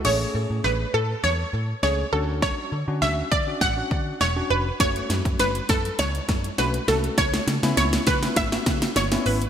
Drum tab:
CC |x---------------|----------------|----------------|----------------|
HH |----------------|----------------|xxxxxxxxxxxxxxxx|xxxxxxxxxxxxxxox|
SD |o---o---o---o---|o---o---o---o---|o-o-o-o-o-o-o-o-|oooooooooooooo--|
BD |----------------|o-----o-o-o-----|o--o--o---o-----|o-----o-o-o-----|